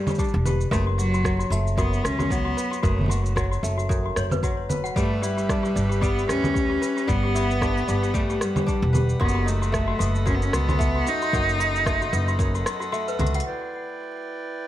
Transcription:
Already playing: G3 D4 E4 B4
0.07 G4, low conga, cabasa
0.10 cabasa
0.15 D4, kick, cabasa
0.19 G4, cabasa
0.24 cabasa
0.28 cabasa
0.34 E1
0.45 G4 B4, low conga, cabasa
0.61 cabasa
0.71 F#1 F#2 A3 F#4 B4, kick, cabasa
0.87 F#4
0.98 F#3 F#4, cabasa
1.14 F#4, cabasa
1.24 F#3, kick, cross-stick, cabasa
1.39 F#4, cabasa
1.50 F#1 A3 F#4, cabasa
1.67 cabasa
1.77 F#2 B3 F#4, kick, cabasa
1.93 cabasa
2.04 C#2 C#4 F#4, cross-stick, cabasa
2.19 F#4, low conga, cabasa
2.30 F#3 B3, kick, cabasa
2.45 F#4
2.57 B4, cabasa
2.71 F#4, cabasa
2.83 F#1 F#2 A3 F#4 B4, kick, cabasa
2.99 low conga
3.01 low conga
3.04 low conga
3.06 low conga
3.08 F#4, low conga, cabasa
3.26 cabasa
3.36 F#3 F#4, kick, cross-stick, cabasa
3.52 F#4, cabasa
3.63 F#1 A3, cabasa
3.78 F#4, cabasa
3.89 F#2, kick, cabasa
4.06 F#4
4.16 F#1 C#5, cross-stick, cabasa
4.31 B4, low conga, cabasa
4.43 F#3 F#4, kick, cabasa
4.69 B4, low conga, cabasa
4.84 F#5, cabasa
4.96 G1 G3 A3 G4 B4 E5 B5, kick, cabasa
5.22 G3 E4 G4, cabasa
5.37 G4, cabasa
5.49 D4, kick, cross-stick, cabasa
5.63 G4, cabasa
5.75 G1 D4, cabasa
5.89 G4, cabasa
6.01 G3 B3 G4, kick, cabasa
6.19 cabasa
6.28 D2 C#4 G4, cross-stick, cabasa
6.44 low conga, cabasa
6.54 G4, kick, cabasa
6.70 G4
6.82 B4, cabasa
6.97 G4, cabasa
7.08 G1 G3 B3 B4 F#5, kick, cabasa
7.24 G4
7.35 E4 G4, cabasa
7.51 cabasa
7.61 D4 G4, kick, cross-stick, cabasa
7.77 cabasa
7.88 G1 D4 G4, cabasa
8.03 G4, cabasa
8.14 G3 A3, kick, cabasa
8.30 G4, cabasa
8.41 G3, cross-stick, cabasa
8.56 G4, low conga, cabasa
8.67 D4 G4, kick, cabasa
8.82 E1
8.93 G4 B4, low conga, cabasa
9.09 cabasa
9.20 F#1 F#2 B3 F#4 A4 D#5, kick
9.29 cabasa
9.35 F#4
9.46 A3 D#4, cabasa
9.62 F#4, cabasa
9.72 A3, kick, cross-stick, cabasa
9.88 F#4
9.99 F#1 B3 F#4, cabasa
10.15 cabasa
10.26 F#2 C#4 F#4, kick, cabasa
10.35 B3
10.42 C#4, cabasa
10.53 C#2 B3 F#4, cross-stick, cabasa
10.69 F#4, low conga, cabasa
10.79 A3, kick, cabasa
10.95 F#4
11.06 D#4 F#4, cabasa
11.22 F#4, cabasa
11.33 F#1 F#2 F#4, kick, cabasa
11.49 cabasa
11.59 D#4 F#4, cabasa
11.76 cabasa
11.86 A3 F#4, kick, cross-stick, cabasa
12.02 F#4, cabasa
12.13 F#1 B3, cabasa
12.28 F#4, cabasa
12.39 F#2, kick, cabasa
12.55 F#4, cabasa
12.66 F#4, cross-stick, cabasa
12.80 F#4, cabasa
12.92 A3 F#4, cabasa
13.08 B4, cabasa
13.19 C#2 F#4, closed hi-hat, low conga
13.27 closed hi-hat
13.34 F#5, closed hi-hat
13.40 closed hi-hat
13.46 E4 B4 D5 G5

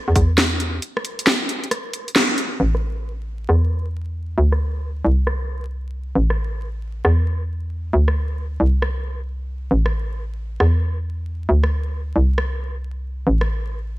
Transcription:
0.08 E2
0.16 E2, kick, open hi-hat
0.38 snare, closed hi-hat
0.60 open hi-hat
0.82 closed hi-hat
0.97 cross-stick
1.05 open hi-hat
1.19 closed hi-hat
1.27 snare, closed hi-hat
1.49 open hi-hat
1.64 closed hi-hat
1.71 cross-stick, closed hi-hat
1.93 open hi-hat
2.08 open hi-hat
2.16 snare, closed hi-hat
2.38 open hi-hat
2.60 A1
2.75 cross-stick
3.49 E2, cross-stick
4.38 D2
4.52 cross-stick
5.04 C2
5.27 cross-stick
6.16 A1
6.30 cross-stick
7.05 E2, cross-stick
7.93 D2
8.08 cross-stick
8.60 C2
8.82 cross-stick
9.71 A1
9.86 cross-stick
10.60 E2, cross-stick
11.49 D2
11.64 cross-stick
12.16 C2
12.38 cross-stick
13.27 A1
13.41 cross-stick

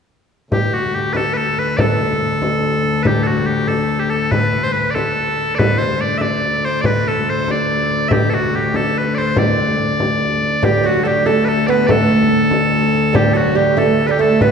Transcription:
0.52 D2 G4, frame drum
0.73 F#4, frame drum
0.95 G4
1.13 A4 B4, frame drum
1.33 A4 B4
1.58 B4, frame drum
1.77 A4 D5, frame drum
2.00 frame drum
2.42 frame drum
2.84 frame drum
3.03 B4, frame drum
3.07 G4
3.24 F#4 A4, frame drum
3.46 G4
3.68 A4, frame drum
4.00 G4
4.10 A4, frame drum
4.31 B4, frame drum
4.53 frame drum
4.64 C5
4.72 B4, frame drum
4.90 D5
4.94 A4, frame drum
5.17 frame drum
5.55 D2 B4 D5
5.59 frame drum
5.78 C5, frame drum
6.01 D5
6.18 D5 E5, frame drum
6.64 C5, frame drum
6.81 D5, frame drum
6.86 B4
7.06 A4, frame drum
7.29 C5
7.48 D5, frame drum
7.90 frame drum
8.09 G4 E5, frame drum
8.30 A4, frame drum
8.35 F#4
8.56 G4
8.74 A4, frame drum
8.98 B4
9.15 C5 D5, frame drum
9.36 D5, frame drum
10.00 frame drum
10.63 D2 G3 G4, frame drum
10.84 F#3 F#4, frame drum
11.04 G3 G4 A4
11.26 A3 A4, frame drum
11.45 A4 B4
11.67 B3 B4 D5, frame drum
11.87 A3 A4 D5, frame drum
12.10 frame drum
12.51 frame drum
12.94 frame drum
13.13 G3 G4, frame drum
13.34 F#3 F#4 A4, frame drum
13.55 G3 G4
13.77 A3 A4, frame drum
14.07 G3 B4
14.11 G4
14.19 A3 A4, frame drum
14.41 B3 B4, frame drum

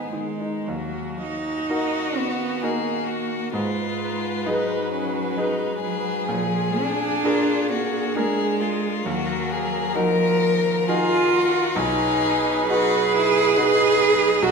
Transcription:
Already playing: G#2 D#3 B3 D#4 G#4 B4 D#5
0.13 D#3 G#3
0.41 D#4
0.67 D#2 F#3 F#4
1.22 D#4
1.69 D#4 F#4 A#4
2.17 B3
2.62 A#3 D#4 F#4 G#4 A#4
3.07 F#4
3.53 G#2 G#3 F4 B4
4.46 F#3 D#4 G#4 B4
4.93 C#4
5.37 D#4 G#4 B4
5.82 F#3 G#4
6.28 A#2 F3 G#4
6.80 D4
7.24 D4 F4 G#4 A#4
7.71 A#3 F#4
8.15 G#3 D4 G#4 A#4
8.61 F4
9.05 D#2 F#3 F#4 A#4
9.51 G#4
9.95 F3 D#4 F#4 A#4
10.88 D#4 F4 F#4 G#4 A#4
11.34 F#4
11.75 B1 D#4 G#4 B4
12.67 D#4 F#4 G#4 B4
13.15 E4
13.57 D#4 F#4 B4
14.42 B1 D#4 F#4 A4

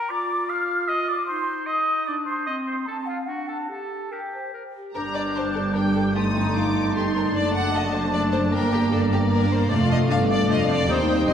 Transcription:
Already playing: A#4
0.10 F4 D5 D6
0.49 F5 F6
0.88 D#5 D#6
1.08 D5 D6
1.27 D#4 C5 C6
1.66 D#5 D#6
2.06 D4 D5 D6
2.26 C5 C6
2.46 C4 D#5 D#6
2.66 C5 C6
2.86 C4 A4 A5
3.07 F4 F5
3.28 D4 F#4 F#5
3.48 A4 A5
3.70 G4 A4 A5
4.11 G4 A#4 G5
4.33 C5
4.53 A#4
4.75 G4
4.94 G1 G2 G3 D4 A#4 G5 A#5 D6
5.15 D5
5.35 C5 A5
5.55 A4
5.74 G3 D4 A#4 G5
5.94 A4
6.15 A3 D#4 G4 A5 C6 D#6
6.35 D#4
6.55 F4 D6
6.74 D#4
6.95 A3 D#4 G4 C6
7.16 A#4
7.34 F#1 F#2 A3 D4 D5 A5 D6
7.54 F#5
7.74 D#5
7.94 C5
8.12 A3 D4 D5
8.33 C5
8.51 G1 G2 A#3 D4 A#4 G5 A#5
8.73 G4
8.91 A4 D5
9.12 G4
9.31 A#3 D4 A#4
9.52 C5
9.68 F1 F2 A3 D4 F4 D5 F5 A5 D6
9.89 A3 D#5 A5 D6
10.08 G1 G2 A3 D4 D5 F5 A5 D6
10.28 A3 D5 A5 D6
10.48 F1 F2 F3 A3 D4 D#5 F5 A5 D6
10.67 A3 D5 A5 D6
10.86 D#2 G3 C4 D#4 G5 D#6
10.91 C5
11.08 C4 D#4 G5 D#6
11.27 F1 F2 G3 C4 D4 D#4 D#5 G5 C6 D#6

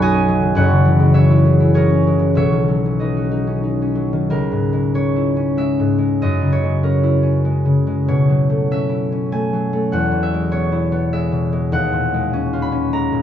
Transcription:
Already playing: B1 F#2 D#3 F#3 C#4 D#4 C#5 E5 F#5 B5
0.02 F#4 D#5 G#5
0.14 C#4
0.28 F#3
0.42 D#3
0.55 F#1 F#2 C#5 F#5
0.70 C#3
0.85 E3
1.00 G#3
1.14 C#4 C#5 E5
1.30 E4
1.45 G#4
1.60 E4
1.74 G#4 A#4 C#5
1.90 C#4
2.07 G#3
2.19 E3
2.35 B1 B2 C#5 E5
2.53 D#3
2.68 F#3
2.86 C#4
3.00 D#4 B4 D#5
3.17 F#4
3.32 D#4
3.47 C#4
3.63 D#4
3.82 C#4
3.95 F#3
4.13 D#3
4.30 C#2 A#4
4.52 G#2
4.73 G#3
4.94 C#4 C#5
5.16 E4
5.37 C#4
5.57 G#3 E5
5.80 G#2
5.98 G#3
6.22 F#2 D#5
6.41 C#3
6.52 C#5
6.63 G#3
6.83 C#4 A#4
7.03 E4
7.23 C#4
7.45 G#3
7.65 C#3
7.87 G#3
8.08 B2 C#5
8.30 F#3
8.50 A3
8.71 C#4 E5
8.89 E4
9.12 C#4
9.32 A3 G#5
9.53 F#3
9.73 A3
9.92 E2 F#5
10.12 B2
10.23 E5
10.34 G#3
10.51 B3 C#5
10.72 E4
10.92 B3
11.13 G#3 E5
11.32 B2
11.52 G#3
11.72 D#2 F#5
11.93 A#2
12.14 G#3
12.33 C#4
12.53 F4
12.62 B5
12.72 C#4
12.93 G#3 A#5
13.12 A#2

